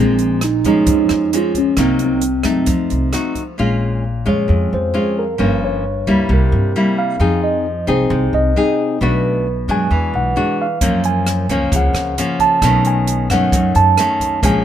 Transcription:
Already playing: upright bass A#1, nylon-string guitar A#2 F3, tine electric piano C4
0.00 nylon-string guitar G#3
0.19 closed hi-hat
0.41 tine electric piano D#4, cross-stick, closed hi-hat
0.64 upright bass F2, nylon-string guitar F3 G#3 C#4, tine electric piano D#4, kick, closed hi-hat
0.87 upright bass F2, nylon-string guitar F2, kick, closed hi-hat
1.09 upright bass F2, cross-stick, closed hi-hat
1.33 nylon-string guitar F3 G#3 C#4, tine electric piano F4, closed hi-hat
1.55 tine electric piano C#4, kick, closed hi-hat
1.77 upright bass C2, nylon-string guitar C3 F#3 A#3 D#4, tine electric piano C4, kick, cross-stick, closed hi-hat
1.99 closed hi-hat
2.04 tine electric piano C4
2.21 closed hi-hat
2.43 upright bass F#2, nylon-string guitar A3 D#4, kick, cross-stick, closed hi-hat
2.66 upright bass F2, nylon-string guitar F3, kick, closed hi-hat
2.90 upright bass C2, closed hi-hat
3.12 nylon-string guitar A3 D#4 F#4, cross-stick, closed hi-hat
3.35 kick, closed hi-hat
3.58 upright bass A#1, nylon-string guitar A#2 G#3 C#4 F4
4.26 upright bass F2, nylon-string guitar G#3 C#4 F4, tine electric piano C#5
4.48 nylon-string guitar F2, upright bass F2
4.73 upright bass F2, tine electric piano C5
4.94 nylon-string guitar G#3 C#4 F4
5.19 tine electric piano A#4
5.38 upright bass G1, nylon-string guitar G2 F3 A#3 C#4
5.64 tine electric piano C#5
6.07 upright bass C#2, nylon-string guitar G3 A#3 E4
6.29 upright bass C2, nylon-string guitar C3
6.33 tine electric piano A#4
6.52 upright bass G2
6.76 nylon-string guitar G3 A#3 E4
6.99 tine electric piano F5
7.19 upright bass F2, nylon-string guitar F3 C4 D#4 G#4
7.44 tine electric piano D#5
7.87 upright bass C2, nylon-string guitar C4 D#4 G#4, tine electric piano C5
8.10 upright bass C2, nylon-string guitar C3
8.33 upright bass C2, tine electric piano D#5
8.56 nylon-string guitar C4 D#4 G#4
9.01 upright bass B1, nylon-string guitar B2 A3 D4 F#4
9.05 tine electric piano B4
9.68 upright bass F#2, nylon-string guitar G#3 D4 F#4, tine electric piano G#5
9.91 upright bass E2, nylon-string guitar E3
10.14 upright bass B1, tine electric piano F#5
10.36 nylon-string guitar G#3 D4 F#4
10.62 tine electric piano F5
10.81 upright bass F#2, nylon-string guitar F#2 F3 A#3 C#4, kick, closed hi-hat
11.04 tine electric piano G#5, closed hi-hat
11.27 cross-stick, closed hi-hat
11.49 upright bass C#2, nylon-string guitar F3 A#3 C#4, kick, closed hi-hat
11.72 upright bass C#2, nylon-string guitar C#3, kick, closed hi-hat
11.76 tine electric piano F#5
11.94 upright bass C#2, cross-stick, closed hi-hat
12.18 nylon-string guitar F3 A#3 C#4, closed hi-hat
12.39 tine electric piano A5, kick, closed hi-hat
12.62 upright bass B1, nylon-string guitar B2 D#3 A3 C#4, kick, cross-stick, closed hi-hat
12.85 tine electric piano G#5, closed hi-hat
13.07 closed hi-hat
13.30 upright bass F#2, nylon-string guitar D#3 A3 C#4, tine electric piano F#5, kick, cross-stick, closed hi-hat
13.52 upright bass F#2, nylon-string guitar F#2, kick, closed hi-hat
13.75 upright bass F#2, tine electric piano A5, closed hi-hat
13.98 nylon-string guitar D#3 A3 C#4, cross-stick, closed hi-hat
14.20 kick, closed hi-hat
14.43 upright bass A#1, nylon-string guitar A#2 F3 G#3 C#4, tine electric piano G#5, kick, closed hi-hat

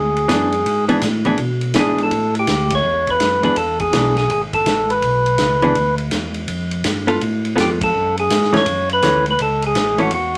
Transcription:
Already playing: tonewheel organ D2 G#4
0.17 ride
0.28 tonewheel organ F#2, hollow-body jazz guitar E3 B3 D4 G#4, kick, snare, hi-hat pedal, ride
0.52 ride
0.65 tonewheel organ G#2, kick, ride
0.89 hollow-body jazz guitar E3 B3 D4 G#4, ride
1.01 tonewheel organ A2, kick, snare, hi-hat pedal, ride
1.25 hollow-body jazz guitar E3 B3 D4 G#4, ride
1.38 tonewheel organ B2, kick, ride
1.61 ride
1.74 tonewheel organ G#2, hollow-body jazz guitar E3 B3 D4 G#4, kick, snare, hi-hat pedal, ride
1.79 tonewheel organ G#4
1.98 ride
2.03 tonewheel organ A4
2.11 tonewheel organ A2, kick, ride
2.35 ride
2.39 tonewheel organ G4
2.47 tonewheel organ D2, kick, snare, hi-hat pedal, ride
2.70 kick, ride
2.75 tonewheel organ C#5
2.85 tonewheel organ E2
3.07 tonewheel organ B4, kick, ride
3.20 tonewheel organ F#2, kick, snare, hi-hat pedal, ride
3.43 tonewheel organ F#2 B4, hollow-body jazz guitar E3 B3 D4 G#4, ride
3.56 tonewheel organ E2 A4, kick, ride
3.80 tonewheel organ G#4, kick, ride
3.93 tonewheel organ B1, hollow-body jazz guitar E3 B3 D4 G#4, kick, snare, hi-hat pedal, ride
4.17 tonewheel organ G#4, snare, ride
4.29 tonewheel organ G#1 G#4, kick, ride
4.53 tonewheel organ A4, kick, ride
4.66 tonewheel organ A1, kick, snare, hi-hat pedal, ride
4.90 tonewheel organ B4, ride
5.02 tonewheel organ B1, kick, ride
5.26 ride
5.38 tonewheel organ C#2, kick, snare, hi-hat pedal, ride
5.62 hollow-body jazz guitar E3 B3 D4 G#4, ride
5.75 tonewheel organ D2, kick, ride
5.98 ride
6.11 tonewheel organ E2, kick, snare, hi-hat pedal, ride
6.34 ride
6.48 tonewheel organ F2, kick, ride
6.71 ride
6.84 tonewheel organ G2, kick, snare, hi-hat pedal, ride
7.07 hollow-body jazz guitar B3 F4 A4, ride
7.21 tonewheel organ A2, kick, ride
7.45 ride
7.56 tonewheel organ F2, hollow-body jazz guitar B3 F4 A4, kick, snare, hi-hat pedal, ride
7.60 tonewheel organ G4
7.81 tonewheel organ A4, kick, ride
7.95 tonewheel organ F#2
8.17 tonewheel organ G#4, ride
8.30 tonewheel organ G#2, kick, snare, hi-hat pedal, ride
8.43 snare
8.53 hollow-body jazz guitar E3 A3 C#4, snare, ride
8.57 tonewheel organ C#5
8.66 tonewheel organ F#2, kick, ride
8.89 tonewheel organ B4, ride
9.02 tonewheel organ D2, hollow-body jazz guitar E3 A3 C#4, kick, snare, hi-hat pedal, ride
9.26 ride
9.31 tonewheel organ B4
9.39 tonewheel organ C#2 A4, kick, ride
9.62 ride
9.67 tonewheel organ G#4
9.75 tonewheel organ A1, kick, snare, hi-hat pedal, ride
9.98 hollow-body jazz guitar E3 A3 C#4, tonewheel organ F#4, ride
10.11 tonewheel organ E2 F#4, kick, ride

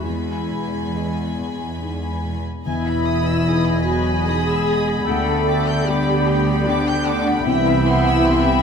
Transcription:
0.04 cello section E2, felt piano E2, viola section G#3, clarinet E4, violin section G#5 B5
0.50 felt piano B2
0.96 felt piano G#4 D#5
1.39 felt piano B3
1.82 felt piano D#4 G#4
2.24 felt piano B2
2.65 double bass section E1, felt piano E1 E2, cello section E2, french horn section E3, clarinet B3, viola section E4, violin section D#5 G#5 B5, flute section E5, oboe G#5
2.87 violin section B5
3.07 violin section D#6
3.26 violin section E6
3.47 felt piano B3 D#4 G#4, flute section G#5, violin section D#6
3.66 violin section B5
3.85 french horn section F#3, viola section F#4, violin section G#5
4.06 violin section B5
4.27 french horn section G#3, felt piano B3 D#4 G#4, viola section G#4, violin section D#6
4.49 violin section E6
4.67 violin section D#6
4.88 violin section B5
5.06 double bass section D2, felt piano D2 D3, cello section D3, french horn section A3, viola section A4, violin section D5 G5, flute section F#5, oboe G5
5.28 violin section B5
5.46 flute section G5, violin section D6
5.67 violin section G6
5.86 french horn section G3, felt piano B3 D4 G4, viola section G4, flute section B5, violin section D6
6.09 violin section B5
6.28 violin section G5
6.48 violin section B5
6.65 french horn section D3, felt piano B3 D4 G4, viola section D4, flute section G5, violin section D6
6.88 violin section G6
7.06 flute section F#5, violin section D6
7.28 violin section B5
7.45 double bass section C2, felt piano C2 C3, cello section C3, french horn section E3, clarinet B3, viola section E4, flute section E5, violin section E5 G5 B5
7.68 violin section B5
7.86 flute section F#5, violin section C6
8.06 violin section E6
8.26 felt piano B3 E4 G4, flute section G5, violin section C6
8.47 violin section B5

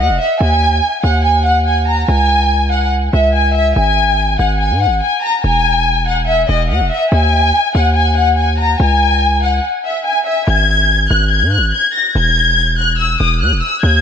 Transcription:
0.00 808-style bass E2, violin section F#5
0.09 808-style bass E1
0.20 violin section E5
0.40 808-style bass D#2, violin section G#5
1.04 808-style bass D#2, violin section F#5
1.25 violin section G#5
1.46 violin section F#5
1.66 violin section G#5
1.88 violin section A#5
2.08 808-style bass C#2, violin section G#5
2.72 violin section F#5
3.13 808-style bass C#2, violin section E5
3.35 violin section G#5
3.55 violin section E5
3.76 808-style bass G#1, violin section G#5
4.39 808-style bass G#1, violin section F#5
4.60 violin section G#5
4.71 808-style bass G#2
4.82 violin section F#5
4.86 808-style bass G#1
5.02 violin section G#5
5.23 violin section A#5
5.44 808-style bass E1, violin section G#5
6.07 violin section F#5
6.27 violin section E5
6.49 808-style bass E1, violin section D#5
6.70 808-style bass E2, violin section F#5
6.80 808-style bass E1
6.91 violin section E5
7.12 808-style bass D#2, violin section G#5
7.75 808-style bass D#2, violin section F#5
7.96 violin section G#5
8.17 violin section F#5
8.38 violin section G#5
8.59 violin section A#5
8.80 808-style bass C#2, violin section G#5
9.43 violin section F#5
9.85 violin section E5
10.06 violin section G#5
10.27 violin section E5
10.47 808-style bass G#1, violin section G#6
11.10 808-style bass G#1, violin section F#6
11.32 violin section G#6
11.42 808-style bass G#2
11.53 violin section F#6
11.58 808-style bass G#1
11.74 violin section G#6
11.94 violin section A#6
12.15 808-style bass E1, violin section G#6
12.79 violin section F#6
12.99 violin section E6
13.20 808-style bass E1, violin section D#6
13.41 808-style bass E2, violin section F#6
13.52 808-style bass E1
13.62 violin section E6
13.83 808-style bass D#2, violin section G#6

